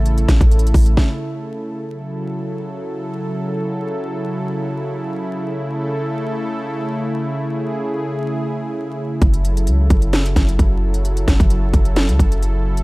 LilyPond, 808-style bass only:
\new Staff \with { instrumentName = "808-style bass" } { \clef bass \time 4/4 \key fis \minor \tempo 4 = 131 a,,8 a,,16 a,,8. a,,8 r2 | r1 | r1 | r1 |
r1 | fis,,4 cis,8 fis,,4 fis,,8 fis,,4~ | fis,,8 fis,,16 fis,,8. fis,,8. cis,16 fis,,4. | }